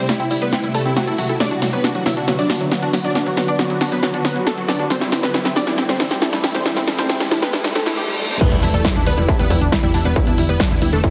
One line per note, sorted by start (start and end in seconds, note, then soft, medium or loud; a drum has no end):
0.00 1.37 C3 medium
0.00 1.36 G3 medium
0.00 1.37 A3 medium
0.00 1.37 E4 medium
0.00 1.36 G4 medium
0.00 riser medium
0.08 0.14 G3 medium
0.08 0.17 E4 medium
0.08 snare medium
0.08 closed hi-hat medium
0.08 shaker medium
0.20 0.25 C4 medium
0.20 0.28 E4 medium
0.20 closed hi-hat soft
0.20 shaker soft
0.31 0.34 G3 medium
0.31 0.39 E4 medium
0.31 open hi-hat loud
0.31 shaker medium
0.41 0.47 G3 medium
0.41 0.50 B3 medium
0.41 0.50 B4 medium
0.41 0.50 B4 loud
0.41 closed hi-hat soft
0.41 shaker soft
0.52 0.58 C4 medium
0.52 0.61 E4 medium
0.52 snare medium
0.52 closed hi-hat medium
0.52 shaker medium
0.63 0.67 G3 medium
0.63 0.72 E4 medium
0.63 closed hi-hat medium
0.63 shaker soft
0.74 0.80 G3 medium
0.74 0.83 A3 medium
0.74 0.83 A4 medium
0.74 open hi-hat loud
0.74 shaker medium
0.85 0.91 C4 medium
0.85 0.94 E4 medium
0.85 closed hi-hat soft
0.85 shaker soft
0.96 1.05 F#3 medium
0.96 1.01 C4 medium
0.96 1.05 F#4 medium
0.96 snare medium
0.96 closed hi-hat medium
0.96 shaker medium
1.07 1.16 E4 medium
1.07 1.10 A4 medium
1.07 closed hi-hat soft
1.07 shaker soft
1.18 1.27 F#3 medium
1.18 1.26 A3 medium
1.18 1.27 F#4 medium
1.18 open hi-hat loud
1.18 shaker medium
1.29 1.38 E4 medium
1.29 1.34 A4 medium
1.29 closed hi-hat soft
1.29 shaker soft
1.40 4.87 D3 medium
1.40 4.87 F#3 medium
1.40 1.45 F#3 medium
1.40 4.87 B3 medium
1.40 1.48 D4 medium
1.40 4.87 F#4 medium
1.40 4.87 B4 medium
1.40 1.48 D5 loud
1.40 1.49 D5 loud
1.40 snare medium
1.40 closed hi-hat medium
1.40 shaker soft
1.51 1.56 D4 medium
1.51 1.59 F#4 medium
1.51 closed hi-hat soft
1.62 1.65 F#3 medium
1.62 1.70 F#4 medium
1.62 snare medium
1.62 open hi-hat loud
1.62 shaker medium
1.73 1.78 F#3 medium
1.73 1.81 B3 medium
1.73 1.81 B4 loud
1.73 closed hi-hat soft
1.73 shaker soft
1.84 1.89 D4 medium
1.84 1.92 F#4 medium
1.84 snare medium
1.84 closed hi-hat medium
1.84 shaker medium
1.95 1.98 F#3 medium
1.95 2.03 F#4 medium
1.95 closed hi-hat soft
1.95 shaker soft
2.06 2.11 F#3 medium
2.06 2.14 E4 medium
2.06 2.14 E5 loud
2.06 2.14 E5 medium
2.06 snare medium
2.06 open hi-hat loud
2.06 shaker medium
2.17 2.22 D4 medium
2.17 2.25 F#4 medium
2.17 closed hi-hat medium
2.17 shaker soft
2.28 2.31 F#3 medium
2.28 2.36 F#4 medium
2.28 snare medium
2.28 closed hi-hat medium
2.28 shaker soft
2.39 2.44 F#3 medium
2.39 2.47 D4 medium
2.39 2.47 D5 medium
2.39 closed hi-hat medium
2.39 shaker soft
2.49 2.55 D4 medium
2.49 2.58 F#4 medium
2.49 snare medium
2.49 open hi-hat loud
2.49 shaker medium
2.61 2.64 F#3 medium
2.61 closed hi-hat soft
2.61 shaker soft
2.72 2.77 F#3 medium
2.72 2.80 F#4 medium
2.72 snare medium
2.72 closed hi-hat medium
2.72 shaker medium
2.82 2.88 D4 medium
2.82 2.91 F#4 medium
2.82 closed hi-hat soft
2.82 shaker soft
2.93 2.96 F#3 medium
2.93 3.02 F#4 medium
2.93 snare medium
2.93 open hi-hat loud
2.93 shaker medium
3.04 3.09 F#3 medium
3.04 3.13 D4 medium
3.04 3.13 D5 medium
3.04 closed hi-hat soft
3.04 shaker soft
3.15 3.20 D4 medium
3.15 3.24 F#4 medium
3.15 snare medium
3.15 closed hi-hat medium
3.15 shaker soft
3.26 3.29 F#3 medium
3.26 3.35 F#4 medium
3.26 closed hi-hat soft
3.37 3.42 F#3 medium
3.37 3.46 F#4 medium
3.37 snare medium
3.37 open hi-hat loud
3.37 shaker medium
3.48 3.53 D4 medium
3.48 3.56 D4 medium
3.48 3.57 D5 loud
3.48 closed hi-hat medium
3.48 shaker soft
3.59 3.62 F#3 medium
3.59 3.68 F#4 medium
3.59 snare medium
3.59 closed hi-hat medium
3.59 shaker medium
3.70 3.75 F#3 medium
3.70 3.78 F#4 medium
3.70 closed hi-hat medium
3.70 shaker soft
3.81 3.86 D4 medium
3.81 3.89 F#4 medium
3.81 snare medium
3.81 open hi-hat loud
3.81 shaker medium
3.92 3.95 F#3 medium
3.92 4.00 B3 medium
3.92 4.00 B4 medium
3.92 closed hi-hat medium
3.92 shaker soft
4.03 4.08 F#3 medium
4.03 4.11 F#4 medium
4.03 snare medium
4.03 closed hi-hat medium
4.03 shaker soft
4.13 4.19 D4 medium
4.13 4.22 F#4 medium
4.13 closed hi-hat medium
4.13 shaker soft
4.25 4.28 F#3 medium
4.25 4.33 B3 medium
4.25 4.33 B4 medium
4.25 snare medium
4.25 open hi-hat loud
4.25 shaker medium
4.36 4.41 F#3 medium
4.36 4.44 F#4 medium
4.36 closed hi-hat medium
4.36 shaker soft
4.47 4.55 A3 medium
4.47 4.52 D4 medium
4.47 4.55 A4 medium
4.47 snare medium
4.47 closed hi-hat medium
4.47 shaker medium
4.57 4.61 F#3 medium
4.57 4.66 F#4 medium
4.57 closed hi-hat soft
4.57 shaker soft
4.68 4.74 F#3 medium
4.68 4.77 D4 medium
4.68 4.77 D5 medium
4.68 snare medium
4.68 open hi-hat loud
4.68 shaker medium
4.79 4.85 D4 medium
4.79 4.88 F#4 medium
4.79 closed hi-hat soft
4.79 shaker soft
4.90 7.94 E3 medium
4.90 4.94 G3 medium
4.90 7.94 A3 medium
4.90 7.94 C4 medium
4.90 4.99 C4 medium
4.90 7.94 G4 medium
4.90 7.94 A4 medium
4.90 4.99 C5 loud
4.90 4.99 C5 medium
4.90 snare medium
4.90 closed hi-hat medium
4.90 shaker soft
5.01 5.07 G3 medium
5.01 5.10 E4 medium
5.01 snare medium
5.01 closed hi-hat medium
5.12 5.17 C4 medium
5.12 5.21 E4 medium
5.12 snare medium
5.12 open hi-hat loud
5.12 shaker medium
5.23 5.26 G3 medium
5.23 5.32 B3 medium
5.23 5.32 B4 loud
5.23 snare medium
5.23 closed hi-hat medium
5.23 shaker soft
5.34 5.39 G3 medium
5.34 5.43 E4 medium
5.34 snare medium
5.34 closed hi-hat medium
5.34 shaker soft
5.45 5.50 C4 medium
5.45 5.53 E4 medium
5.45 5.54 E4 medium
5.45 snare medium
5.45 closed hi-hat medium
5.45 shaker soft
5.56 5.59 G3 medium
5.56 5.64 D4 medium
5.56 5.64 D5 medium
5.56 5.65 D5 loud
5.56 snare medium
5.56 open hi-hat loud
5.56 shaker medium
5.67 5.72 G3 medium
5.67 5.75 E4 medium
5.67 5.76 E4 medium
5.67 snare medium
5.67 closed hi-hat medium
5.67 shaker soft
5.78 5.83 C4 medium
5.78 5.86 E4 medium
5.78 snare loud
5.78 closed hi-hat medium
5.78 shaker medium
5.89 5.92 G3 medium
5.89 5.97 C4 medium
5.89 5.97 C5 medium
5.89 snare medium
5.89 closed hi-hat medium
5.89 shaker soft
6.00 6.05 G3 medium
6.00 6.08 E4 medium
6.00 snare loud
6.00 open hi-hat loud
6.00 shaker medium
6.11 6.16 C4 medium
6.11 snare medium
6.11 closed hi-hat medium
6.11 shaker soft
6.22 6.25 G3 medium
6.22 6.30 E4 medium
6.22 snare loud
6.22 closed hi-hat medium
6.22 shaker soft
6.33 6.38 G3 medium
6.33 6.41 E4 medium
6.33 snare medium
6.33 closed hi-hat medium
6.33 shaker soft
6.43 6.49 C4 medium
6.43 6.52 E4 medium
6.43 snare loud
6.43 open hi-hat loud
6.43 shaker medium
6.55 6.58 G3 medium
6.55 6.63 C4 medium
6.55 6.63 C5 loud
6.55 snare medium
6.55 closed hi-hat medium
6.55 shaker soft
6.65 6.71 G3 medium
6.65 6.74 E4 medium
6.65 snare loud
6.65 closed hi-hat medium
6.65 shaker soft
6.76 6.82 C4 medium
6.76 6.85 E4 medium
6.76 snare medium
6.76 closed hi-hat medium
6.76 shaker soft
6.88 6.91 G3 medium
6.88 6.96 E4 medium
6.88 snare loud
6.88 open hi-hat loud
6.88 shaker medium
6.99 7.04 G3 medium
6.99 7.07 C4 medium
6.99 7.07 C5 loud
6.99 snare loud
6.99 closed hi-hat medium
6.99 shaker soft
7.09 7.15 C4 medium
7.09 7.18 E4 medium
7.09 snare loud
7.09 closed hi-hat medium
7.09 shaker medium
7.20 7.24 G3 medium
7.20 7.29 E4 medium
7.20 snare medium
7.20 closed hi-hat medium
7.20 shaker soft
7.31 7.36 G3 medium
7.31 7.40 E4 medium
7.31 snare loud
7.31 open hi-hat loud
7.31 shaker medium
7.42 7.51 B3 medium
7.42 7.47 C4 medium
7.42 7.51 B4 medium
7.42 7.51 B4 loud
7.42 snare medium
7.42 closed hi-hat medium
7.42 shaker soft
7.53 7.56 G3 medium
7.53 7.62 E4 medium
7.53 snare loud
7.53 closed hi-hat medium
7.53 reverse cymbal medium
7.53 shaker soft
7.64 7.69 G3 medium
7.64 7.73 E4 medium
7.64 snare loud
7.64 closed hi-hat medium
7.64 shaker soft
7.75 7.84 A3 medium
7.75 7.78 C4 medium
7.75 7.83 A4 medium
7.75 7.84 A4 medium
7.75 snare loud
7.75 open hi-hat loud
7.75 shaker medium
7.86 7.94 E4 medium
7.86 7.89 E4 medium
7.86 snare medium
7.86 closed hi-hat medium
7.86 shaker soft
7.97 8.00 G4 medium
8.08 8.11 G3 medium
8.19 8.22 G3 medium
8.30 8.38 C5 medium
8.41 11.10 D3 medium
8.41 11.10 G3 medium
8.41 8.44 G3 medium
8.41 11.10 B3 medium
8.41 8.49 B3 medium
8.41 11.10 E4 medium
8.41 11.10 G4 medium
8.41 8.49 B4 loud
8.41 kick loud
8.41 closed hi-hat medium
8.41 crash medium
8.41 impact medium
8.41 shaker soft
8.52 8.61 E1 medium
8.52 8.57 G3 medium
8.52 8.60 E4 medium
8.52 closed hi-hat medium
8.63 8.72 E1 loud
8.63 8.68 D4 medium
8.63 8.71 E4 medium
8.63 open hi-hat loud
8.63 shaker medium
8.74 8.83 E1 loud
8.74 8.77 G3 medium
8.74 8.82 A3 medium
8.74 8.82 A4 loud
8.74 closed hi-hat medium
8.74 shaker soft
8.85 8.90 G3 medium
8.85 8.93 E4 medium
8.85 kick loud
8.85 snare loud
8.85 closed hi-hat medium
8.85 shaker soft
8.96 9.05 E1 medium
8.96 9.01 D4 medium
8.96 9.04 E4 medium
8.96 closed hi-hat medium
9.06 9.15 D1 loud
9.06 9.10 G3 medium
9.06 9.15 B3 medium
9.06 9.15 B4 loud
9.06 open hi-hat loud
9.06 shaker medium
9.17 9.26 E1 medium
9.17 9.23 G3 medium
9.17 9.26 E4 medium
9.17 closed hi-hat medium
9.17 shaker soft
9.28 9.34 D4 medium
9.28 9.37 E4 medium
9.28 kick loud
9.28 closed hi-hat medium
9.28 shaker soft
9.39 9.48 E1 medium
9.39 9.42 G3 medium
9.39 9.48 B3 medium
9.39 9.48 B4 medium
9.39 closed hi-hat medium
9.50 9.59 E1 loud
9.50 9.55 G3 medium
9.50 9.59 E4 medium
9.50 kick medium
9.50 open hi-hat loud
9.50 shaker medium
9.61 9.70 E1 medium
9.61 9.66 D4 medium
9.61 closed hi-hat medium
9.61 shaker medium
9.72 9.75 G3 medium
9.72 9.81 E4 medium
9.72 kick loud
9.72 snare loud
9.72 closed hi-hat medium
9.72 shaker soft
9.83 9.92 E1 medium
9.83 9.88 G3 medium
9.83 9.92 E4 medium
9.83 closed hi-hat medium
9.93 10.03 E1 loud
9.93 9.99 D4 medium
9.93 10.03 E4 medium
9.93 open hi-hat loud
9.93 shaker loud
10.05 10.14 E1 medium
10.05 10.08 G3 medium
10.05 10.13 B3 medium
10.05 10.13 B4 loud
10.05 10.14 B4 medium
10.05 closed hi-hat medium
10.05 shaker medium
10.16 10.21 G3 medium
10.16 10.24 E4 medium
10.16 kick loud
10.16 closed hi-hat medium
10.16 shaker soft
10.27 10.36 E1 medium
10.27 10.32 D4 medium
10.27 10.35 E4 medium
10.27 closed hi-hat medium
10.38 10.47 E1 loud
10.38 10.41 G3 medium
10.38 10.46 E4 medium
10.38 open hi-hat loud
10.38 shaker medium
10.49 10.58 E1 medium
10.49 10.54 G3 medium
10.49 10.57 B3 medium
10.49 10.57 B4 loud
10.49 10.57 B4 medium
10.49 closed hi-hat medium
10.49 shaker medium
10.60 10.65 D4 medium
10.60 10.68 E4 medium
10.60 kick loud
10.60 snare loud
10.60 closed hi-hat medium
10.60 shaker soft
10.71 10.80 E1 medium
10.71 10.74 G3 medium
10.71 10.79 E4 medium
10.71 closed hi-hat medium
10.82 10.91 D1 loud
10.82 10.87 G3 medium
10.82 10.90 E4 medium
10.82 open hi-hat loud
10.82 shaker loud
10.93 11.02 E1 medium
10.93 11.01 A3 medium
10.93 10.98 D4 medium
10.93 11.01 A4 medium
10.93 11.01 A4 loud
10.93 closed hi-hat medium
10.93 shaker medium
11.03 11.07 G3 medium
11.03 11.10 E4 medium
11.03 kick loud
11.03 closed hi-hat medium
11.03 shaker soft